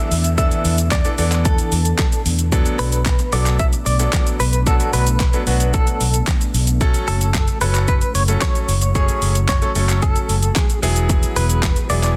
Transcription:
Already playing: E3 B3 D4 A4 E5, downlifter
0.11 E2, open hi-hat, shaker
0.24 closed hi-hat, shaker
0.38 E3 B3 D4 A4 E5, kick, closed hi-hat, shaker
0.51 closed hi-hat, shaker
0.65 E2, open hi-hat, shaker
0.78 closed hi-hat, shaker
0.91 D5, kick, snare, clap, closed hi-hat, shaker
1.05 E3 B3 D4 A4, closed hi-hat, shaker
1.18 E2 E3 B3 D4 A4, open hi-hat, shaker
1.32 clap, closed hi-hat, shaker
1.45 A4, kick, closed hi-hat, shaker
1.58 closed hi-hat, shaker
1.72 E2, open hi-hat, shaker
1.85 closed hi-hat, shaker
1.99 kick, snare, clap, closed hi-hat, shaker
2.12 closed hi-hat, shaker
2.26 E2, open hi-hat, shaker
2.39 closed hi-hat, shaker
2.52 F#3 A3 B3 D4 A4, kick, closed hi-hat, shaker
2.66 closed hi-hat, shaker
2.79 B1 B4, open hi-hat, shaker
2.92 closed hi-hat, shaker
3.06 kick, snare, clap, closed hi-hat, shaker
3.19 closed hi-hat, shaker
3.32 B1 F#3 B3 D4 A4 D5, open hi-hat, shaker
3.46 clap, closed hi-hat, shaker
3.59 E5, kick, closed hi-hat, shaker
3.73 closed hi-hat, shaker
3.86 B1 D5, open hi-hat, shaker
3.99 F#3 B3 D4 A4, closed hi-hat, shaker
4.13 kick, snare, clap, closed hi-hat, shaker
4.27 closed hi-hat, shaker
4.40 B1 B4, open hi-hat, shaker
4.53 closed hi-hat, shaker
4.66 F#3 B3 D4 F#4 A4, kick, closed hi-hat, shaker
4.80 closed hi-hat, shaker
4.93 B1 B4, open hi-hat, shaker
5.07 closed hi-hat, shaker
5.20 kick, snare, clap, closed hi-hat, shaker
5.33 F#3 B3 D4 A4, closed hi-hat, shaker
5.47 B1 F#3 B3 D4 F#4, open hi-hat, shaker
5.60 closed hi-hat, shaker
5.74 A4, kick, closed hi-hat, shaker
5.87 closed hi-hat, shaker
6.01 B1, open hi-hat, shaker
6.14 closed hi-hat, shaker
6.27 kick, snare, clap, closed hi-hat, shaker
6.41 closed hi-hat, shaker
6.54 B1, open hi-hat, shaker
6.67 closed hi-hat, shaker
6.81 F#3 A3 C#4 F#4 A4, kick, closed hi-hat, shaker
6.94 closed hi-hat, shaker
7.08 F#1 A4, open hi-hat, shaker
7.21 closed hi-hat, shaker
7.34 kick, snare, clap, closed hi-hat, shaker
7.48 closed hi-hat, shaker
7.61 F#1 F#3 A3 C#4 A4 B4, open hi-hat, shaker
7.75 clap, closed hi-hat, shaker
7.88 B4, kick, closed hi-hat, shaker
8.01 closed hi-hat, shaker
8.15 F#1 C#5, open hi-hat, shaker
8.28 F#3 A3 C#4 A4, closed hi-hat, shaker
8.41 C#5, kick, snare, clap, closed hi-hat, shaker
8.55 closed hi-hat, shaker
8.68 F#1, open hi-hat, shaker
8.82 closed hi-hat, shaker
8.95 F#3 A3 C#4 G#4 C#5, kick, closed hi-hat, shaker
9.08 closed hi-hat, shaker
9.22 F#1, open hi-hat, shaker
9.35 closed hi-hat, shaker
9.49 C#5, kick, snare, clap, closed hi-hat, shaker
9.62 F#3 A3 C#4 A4, closed hi-hat, shaker
9.75 F#1 F#3 A3 C#4 A4, open hi-hat, shaker
9.89 clap, closed hi-hat, shaker
10.02 A4, kick, closed hi-hat, shaker
10.16 closed hi-hat, shaker
10.29 F#1, open hi-hat, shaker
10.43 closed hi-hat, shaker
10.55 G#4, kick, snare, clap, closed hi-hat, shaker
10.70 closed hi-hat, shaker
10.82 E1 E3 F#3 B3 E4 G#4, open hi-hat, shaker
10.96 closed hi-hat, shaker
11.09 kick, closed hi-hat, shaker
11.23 closed hi-hat, shaker
11.36 E1 B4, open hi-hat, shaker
11.50 closed hi-hat, shaker
11.63 kick, snare, clap, closed hi-hat, shaker
11.76 closed hi-hat, shaker
11.90 E1 F#3 B3 E4 G#4 D5, open hi-hat, shaker
12.03 clap, closed hi-hat, shaker

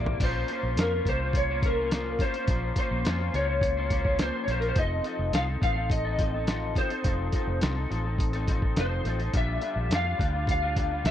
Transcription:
Already playing: A1 C3 G3 A#3 E4 D5
0.06 floor tom
0.20 A#1 A#2 F3 A#3 C#4 F4 C5, kick, closed hi-hat, crash
0.48 A#3 C#4, closed hi-hat
0.52 F4 C5
0.63 A#1
0.77 F2 A#2 F3 A#3 C#4 F4 A#4, snare, closed hi-hat
0.81 C5
0.93 A#3 C#4 F4 C5
1.05 C2 A#3 C#4 C5, kick, closed hi-hat
1.09 F4 C5
1.22 A#3 C#4 F4 C5
1.33 C#5, kick, closed hi-hat
1.50 A#3 C#4 F4 C5
1.62 A#3 C#4 A#4, kick, closed hi-hat
1.67 F4 C5
1.79 A#3 C#4 F4 C5
1.91 A#2 F3 A#3 C#4 F4 C5, snare, closed hi-hat
2.19 A#3 C#4 C5, kick, snare, closed hi-hat
2.23 F4 C5
2.34 F4 C5, closed hi-hat
2.38 A#3 C#4
2.48 A#1 A#2 F3 A#3 C#4 F4 C5, kick, closed hi-hat
2.76 A#3 C#4 F4 C5, kick, closed hi-hat
2.80 C5
2.91 A#1
3.05 F2 A#2 F3 A#3 C#4 F4 C5, snare, closed hi-hat
3.20 A#3 C#4 F4 C5
3.33 C#2 A#3 C#4 F4 C5 C#5, closed hi-hat
3.48 A#3 C#4 F4 C5
3.61 kick, closed hi-hat
3.77 A#3 C#4 F4 C5
3.90 A#3 C#4 F4 C5, kick, closed hi-hat
4.05 A#3 C#4 F4 C5, kick
4.19 A#2 F3 A#3 C#4 F4 C5, snare, closed hi-hat
4.44 A#3 C#5
4.48 A#1 C#4 F4 C5, snare, closed hi-hat
4.60 A#4 C5, closed hi-hat
4.64 A#3 C#4 F4
4.68 C5
4.76 F1 F3 C4 D#4 A4 D#5, kick, closed hi-hat
5.04 F3 C4 D#4 A4, closed hi-hat
5.19 F1
5.32 C2 F3 C4 D#4 A4 F5, snare, closed hi-hat
5.47 C4 D#4 A4
5.61 A1 F3 C4 D#4 A4 F5, kick, closed hi-hat
5.75 C4 D#4 A4
5.90 D#5, kick, closed hi-hat
6.05 C4 D#4 A4
6.19 F3 C4 D#4 A4, kick, closed hi-hat
6.34 C4 D#4 A4
6.47 F3 C4 D#4 A4, snare, closed hi-hat
6.75 F3 C4 D#4 A4 C5, kick, snare, closed hi-hat
6.89 C4 D#4 A4, closed hi-hat
7.04 F1 F3 C4 D#4 A4, kick, closed hi-hat
7.32 F3 C4 D#4 A4, kick, closed hi-hat
7.47 F1
7.61 C2 F3 C4 D#4 A4, snare, closed hi-hat
7.76 C4 D#4 A4
7.90 A1 F3 C4 D#4 A4, closed hi-hat
8.04 C4 D#4 A4
8.18 kick, closed hi-hat
8.33 C4 D#4 A4, closed hi-hat
8.48 F3 C4 D#4 A4, kick, closed hi-hat
8.62 C4 D#4 A4, kick
8.76 F1 F3 C4 D#4 A4 C5, snare, closed hi-hat
9.04 A1 F3 C4 D#4 A4, snare, closed hi-hat
9.19 C4 D#4 A4, closed hi-hat
9.33 A#1 A#2 D3 G3 D4 F4, kick, closed hi-hat
9.37 E5
9.61 D3 G3 D4 F4, closed hi-hat
9.76 A#1
9.89 F2 A#2 D3 G3 D4 F4, snare, closed hi-hat
9.95 F5
10.05 G3 D4 F4
10.18 D2 D3 G3 D4 F4, kick, closed hi-hat
10.33 G3 D4 F4
10.47 F5, kick, closed hi-hat
10.62 G3 D4 F4
10.76 D3 G3 D4 F4, kick, closed hi-hat
10.91 G3 D4 F4
11.04 C2 A#2 D3 G3 D4 F4 E5, snare, closed hi-hat

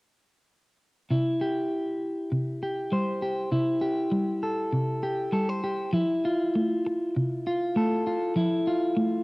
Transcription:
1.11 C3 E4
1.41 G4
2.32 C3
2.63 G4
2.92 G3 C5
3.22 G4
3.52 C3 E4
3.81 G4
4.12 G3
4.43 A4
4.72 C3
5.03 G4
5.32 G3 A4
5.49 C5
5.64 G4
5.93 F3 E4
6.25 F4
6.55 A3
6.86 muted clean electric guitar stroke
7.16 C3
7.47 F4
7.76 A3 A4
8.07 F4
8.36 F3 E4
8.67 F4
8.97 A3

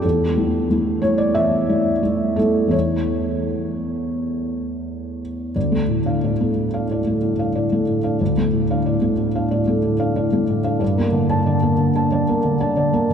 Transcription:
0.02 E2 A4
0.37 A3 E4
0.71 A3 E4
1.02 A3 E4 C#5
1.18 D5
1.35 E3 E5
1.69 A3 E4
2.03 A3 E4
2.36 A3 E4 A4
2.67 E2 A3 C#5
2.72 E4
5.56 D2 D5
5.72 A3 A4
5.89 A2
6.06 D4 F5
6.24 A2 D5
6.41 A3 A4
6.57 A2
6.74 D4 F5
6.91 A2 D5
7.07 A3 A4
7.22 A2
7.39 D4 F5
7.55 A2 D5
7.72 A3 A4
7.88 A2
8.04 D4 F5
8.21 D2 D5
8.37 A3 A4
8.53 A2
8.70 D4 F5
8.86 A2 D5
9.01 A3 A4
9.17 A2
9.35 D4 F5
9.51 A2 D5
9.67 A3 A4
9.84 A2
9.99 D4 F5
10.16 A2 D5
10.33 A3 A4
10.49 A2
10.64 D4 F5
10.79 G2 D5
10.98 A#3 A#4
11.12 D3
11.30 D4 A5
11.46 D3 D5
11.62 A#3 A#4
11.78 D3
11.96 D4 A5
12.12 D3 D5
12.28 A#3 A#4
12.45 D3
12.60 D4 A5
12.77 D3 D5
12.93 A#3 A#4
13.10 D3

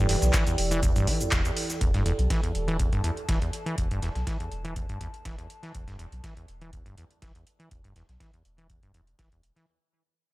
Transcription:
Already playing: E1 E3 E4 G4 A4 B4 D5 G5
0.09 G2, snare, closed hi-hat, open hi-hat
0.22 B1, snare, shaker
0.33 E3, kick, snare, clap, closed hi-hat, shaker
0.47 E2, closed hi-hat, shaker
0.58 E1, closed hi-hat, open hi-hat
0.71 E3, closed hi-hat, shaker
0.83 E2, kick, closed hi-hat, shaker
0.96 E1 G2, closed hi-hat, shaker
1.07 E3, kick, closed hi-hat, open hi-hat
1.20 E2, closed hi-hat, shaker
1.31 E1 E2, kick, snare, clap, closed hi-hat, shaker
1.45 E2, closed hi-hat, shaker
1.57 closed hi-hat, open hi-hat
1.70 snare, closed hi-hat, shaker
1.81 E1 E2 A4, kick, closed hi-hat
1.94 G2, snare, closed hi-hat
2.06 E2, closed hi-hat
2.19 B1, closed hi-hat
2.27 E3 A5, kick, snare, closed hi-hat
2.43 E2, closed hi-hat
2.55 E1, closed hi-hat
2.68 E3, closed hi-hat
2.79 E2, kick, closed hi-hat
2.92 E1 G2, closed hi-hat
3.04 E2, closed hi-hat
3.17 closed hi-hat
3.29 E1 E3, kick, snare, closed hi-hat
3.42 E2, closed hi-hat
3.53 closed hi-hat
3.66 E3, closed hi-hat
3.78 E1 E2, kick, closed hi-hat
3.91 G2, closed hi-hat
4.02 E2, snare, closed hi-hat
4.15 B1, snare, closed hi-hat
4.27 E3, kick, snare, closed hi-hat
4.40 E2, closed hi-hat
4.52 E1, closed hi-hat
4.65 E3, closed hi-hat
4.76 E2, kick, closed hi-hat
4.89 E1 G2, closed hi-hat
5.01 E2, kick, closed hi-hat
5.14 closed hi-hat
5.25 E1 E3, kick, snare, closed hi-hat
5.38 E2, closed hi-hat
5.50 closed hi-hat
5.63 E3, snare, closed hi-hat
5.75 E1 E2, kick, closed hi-hat
5.88 G2, snare, closed hi-hat
5.99 E2, closed hi-hat
6.12 B1, closed hi-hat
6.24 E3, kick, snare, closed hi-hat
6.37 E2, closed hi-hat
6.48 E1, closed hi-hat
6.61 E3, closed hi-hat
6.73 E2, kick, closed hi-hat
6.86 E1 G2, closed hi-hat
6.97 E2, closed hi-hat
7.11 closed hi-hat
7.22 E1 E3, kick, snare, closed hi-hat
7.35 E2, closed hi-hat
7.47 closed hi-hat
7.60 E3, closed hi-hat
7.71 E1 E2, kick, closed hi-hat
7.84 G2, closed hi-hat
7.96 E2, snare, closed hi-hat
8.09 B1, snare, closed hi-hat
8.20 E3, kick, snare, closed hi-hat
8.33 E2, closed hi-hat
8.45 E1, closed hi-hat
8.58 E3, closed hi-hat
8.70 E2, kick, closed hi-hat
8.83 E1 G2, closed hi-hat
8.94 E2, closed hi-hat
9.07 closed hi-hat
9.19 E1 E3, kick, snare, closed hi-hat
9.32 E2, closed hi-hat
9.43 closed hi-hat
9.56 E3, snare, closed hi-hat

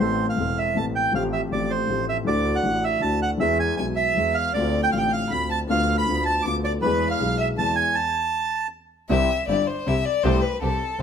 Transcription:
Already playing: E3
0.00 A1 A2 B3 C4 A4 C5
0.29 F5
0.36 E1 E2 E3 B3 C4
0.40 A4
0.58 E5
0.74 A1 A2 E3 B3 C4 A5
0.79 A4
0.95 G5
1.12 A1 A2 F3 A3 C4 F5
1.16 G4
1.33 E5
1.50 A1 A2 F3 A3 C4 G4 D5
1.70 C5
1.87 A1 A2 F3 A3 C4
1.91 G4
2.09 E5
2.25 D2 D3 E3 A3 D4 F#4 D5
2.56 F#5
2.63 A1 A2 E3 A3 D4 F#4
2.84 E5
3.00 D2 D3 E3 A3 D4 A5
3.04 F#4
3.22 F#5
3.37 E2 E3 G#3 B3 E5
3.42 G#4
3.60 G#5
3.76 B1 B2 E3 G#3 B3 G#5
3.80 G#4
3.96 E5
4.16 E2 E3 G#3 B3 G#4
4.34 F5
4.54 D2 D3 A3 C4 D5
4.58 F4
4.82 G5
4.92 A1 A2 D3 A3 C4 F4 F5
4.97 G5
5.11 F5
5.29 D2 D3 A3 C4 B5
5.33 F4
5.50 A5
5.67 D2 D3 A3 B3 F4 F5
5.98 B5
6.05 D2 D3 A3 B3 F4
6.25 A5
6.42 D2 D3 A3 B3 D6
6.47 F4 D6
6.64 D5
6.82 E2 E3 G#3 B3 B4
6.86 G#4
7.11 F5
7.20 B1 B2 E3 G#3 B3 G#4
7.38 E5
7.58 E2 E3 G#3 B3 G#4 A5
7.76 G#5
7.95 A5
9.10 C2 C3 E3 G3 C4 E4 G4 E5
9.48 G1 G2 C4 E4 G4 D5
9.67 C5
9.86 C2 C3 C4 E4 G4 E5
10.05 D5
10.23 C2 C3 E3 A3 C4 G4 A4 C5
10.42 B4
10.61 C2 C3 C4 G4 A4
10.99 C2 C3

